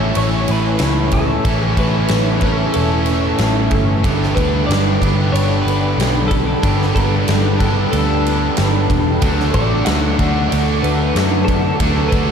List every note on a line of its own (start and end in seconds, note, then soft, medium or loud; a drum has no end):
0.00 0.11 A1 medium
0.00 1.44 A2 medium
0.00 1.45 A2 medium
0.00 1.44 E3 medium
0.00 1.45 E3 medium
0.00 1.46 A3 medium
0.00 1.48 A3 loud
0.00 0.47 C#4 medium
0.00 1.44 C#4 medium
0.00 0.12 E4 medium
0.00 1.44 E4 medium
0.00 1.46 A4 medium
0.00 12.31 A4 medium
0.00 4.01 C#5 medium
0.00 0.17 E5 loud
0.00 4.01 E5 medium
0.00 4.01 C#6 medium
0.13 0.45 A1 medium
0.13 0.78 E4 medium
0.13 0.50 C#5 loud
0.13 ride loud
0.48 0.77 A1 medium
0.48 1.44 C#4 medium
0.48 1.13 B4 medium
0.48 ride medium
0.79 1.37 C#2 loud
0.79 1.76 E4 medium
0.79 snare loud
0.79 ride medium
1.11 3.72 A4 medium
1.11 1.65 A4 medium
1.11 kick medium
1.11 ride medium
1.45 1.74 A1 medium
1.45 2.41 A2 medium
1.45 2.41 E3 medium
1.45 2.43 A3 medium
1.45 2.09 C#4 medium
1.45 2.42 C#4 loud
1.45 2.41 E4 medium
1.45 2.42 A4 loud
1.45 kick loud
1.45 ride medium
1.65 1.78 G4 medium
1.77 2.06 A1 medium
1.77 2.74 E4 medium
1.77 2.42 B4 medium
1.77 kick medium
1.77 ride medium
2.08 2.66 A1 medium
2.08 2.42 C#4 medium
2.08 snare loud
2.08 ride medium
2.41 4.03 A2 medium
2.41 4.04 E3 medium
2.41 4.05 A3 medium
2.41 4.03 C#4 medium
2.41 3.07 C#4 medium
2.41 4.03 E4 medium
2.41 2.71 A4 medium
2.41 4.05 A4 medium
2.41 kick medium
2.41 ride medium
2.73 3.32 E1 medium
2.73 3.39 E4 medium
2.73 3.67 A4 medium
2.73 ride medium
3.06 4.05 C#4 medium
3.06 ride medium
3.38 3.68 A1 medium
3.38 4.05 E4 medium
3.38 snare loud
3.38 ride medium
3.71 4.04 G1 medium
3.71 4.08 A4 medium
3.71 kick medium
3.71 ride medium
4.04 4.33 G1 loud
4.04 5.04 G2 medium
4.04 5.00 D3 medium
4.04 5.03 G3 medium
4.04 4.68 G3 medium
4.04 5.02 B3 loud
4.04 5.02 D4 medium
4.04 12.31 D4 medium
4.04 5.01 G4 medium
4.04 9.18 G5 medium
4.04 9.18 B5 medium
4.04 kick loud
4.04 ride medium
4.23 snare soft
4.35 4.65 D2 medium
4.35 5.00 B3 medium
4.35 4.66 B4 medium
4.35 kick medium
4.35 ride medium
4.67 4.97 G1 medium
4.67 6.31 G3 medium
4.67 5.29 D5 loud
4.67 ride medium
4.72 snare loud
5.01 5.30 G1 medium
5.01 6.61 G2 medium
5.01 6.63 D3 medium
5.01 6.62 G3 medium
5.01 5.65 B3 medium
5.01 6.62 B3 medium
5.01 6.64 D4 medium
5.01 6.62 G4 medium
5.01 kick medium
5.01 ride medium
5.32 5.62 G1 medium
5.32 5.98 D4 medium
5.32 5.61 C#5 loud
5.32 ride medium
5.62 5.94 G1 medium
5.62 6.27 B4 medium
5.67 6.95 B3 medium
5.67 ride medium
5.98 6.54 B1 medium
5.98 7.94 D4 medium
5.98 snare loud
5.98 ride loud
6.28 6.90 A4 medium
6.28 8.29 A4 medium
6.28 kick medium
6.28 ride medium
6.63 6.91 G1 medium
6.63 7.58 G2 medium
6.63 7.59 D3 medium
6.63 7.58 G3 medium
6.63 7.28 G3 medium
6.63 7.59 B3 medium
6.63 7.59 D4 medium
6.63 7.59 G4 medium
6.63 kick loud
6.63 ride loud
6.82 snare soft
6.95 7.24 G1 medium
6.95 7.61 B3 medium
6.95 7.58 B4 medium
6.95 kick medium
6.95 ride medium
7.28 7.84 G1 medium
7.28 8.90 G3 medium
7.28 snare loud
7.28 ride loud
7.59 9.20 G2 medium
7.59 9.20 D3 medium
7.59 9.21 G3 medium
7.59 9.20 B3 medium
7.59 8.25 B3 medium
7.59 9.22 D4 medium
7.59 9.20 G4 medium
7.59 7.90 A4 medium
7.59 kick medium
7.59 ride medium
7.92 8.49 D2 medium
7.92 8.57 D4 medium
7.92 8.85 A4 medium
7.92 ride medium
8.26 9.23 B3 medium
8.26 ride medium
8.57 8.86 G1 medium
8.57 10.52 D4 medium
8.57 snare loud
8.57 ride medium
8.89 9.17 E1 medium
8.89 11.48 A4 medium
8.89 kick medium
8.89 ride medium
9.21 9.50 D2 loud
9.21 10.21 D3 medium
9.21 9.87 F#3 medium
9.21 10.21 F#3 medium
9.21 10.20 A3 medium
9.21 10.20 D4 medium
9.21 10.19 F#4 medium
9.21 12.31 F#5 medium
9.21 11.78 D6 medium
9.21 kick loud
9.21 ride medium
9.40 snare soft
9.54 9.82 A1 medium
9.54 10.18 A3 medium
9.54 9.85 D5 medium
9.54 kick medium
9.54 ride medium
9.85 10.15 D2 medium
9.85 11.81 F#3 medium
9.85 10.49 F#5 loud
9.85 snare loud
9.85 ride medium
10.19 10.47 D2 medium
10.19 11.79 D3 medium
10.19 11.81 F#3 medium
10.19 10.83 A3 medium
10.19 11.79 A3 medium
10.19 11.79 D4 medium
10.19 11.82 F#4 medium
10.19 kick medium
10.19 ride medium
10.49 10.80 D2 medium
10.49 11.16 D4 medium
10.49 10.83 D5 loud
10.49 ride medium
10.82 11.11 D2 medium
10.82 12.12 A3 medium
10.82 11.44 B4 medium
10.82 ride medium
11.15 11.71 F#2 medium
11.15 12.31 D4 medium
11.15 snare loud
11.15 ride medium
11.45 12.08 A4 medium
11.45 12.31 A4 medium
11.45 kick medium
11.45 ride medium
11.80 12.08 D2 loud
11.80 12.31 D3 medium
11.80 12.31 F#3 medium
11.80 12.31 A3 medium
11.80 12.31 D4 loud
11.80 12.31 F#4 loud
11.80 12.31 C#6 medium
11.80 kick loud
11.80 ride loud
12.08 12.31 D2 medium
12.08 12.31 B4 medium
12.08 kick medium
12.08 ride medium
12.13 12.31 A3 medium